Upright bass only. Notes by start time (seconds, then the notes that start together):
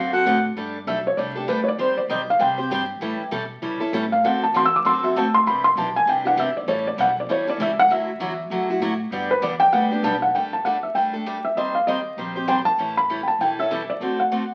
Already playing: F#2
0.25 A2
0.56 G2
0.86 B1
1.17 C2
1.48 D2
1.77 D#2
2.08 B1
2.39 C2
2.70 G2
3.00 A2
3.19 muted upright bass stroke
3.31 B2
3.62 C#3
3.80 muted upright bass stroke
3.92 A2
4.24 D2
4.54 E2
4.84 F#2
5.15 D2
5.46 C2
5.75 B1
6.05 C2
6.36 G1
6.66 A1
6.97 B1
7.27 E2
7.58 C#2
7.88 D2
8.19 E2
8.50 F#2
8.80 A2
9.10 G2
9.41 E2
9.72 D2
10.02 B1
10.33 G1
10.94 D2
11.55 D#2
12.17 A#1
12.78 A1
13.39 E1
14.00 D2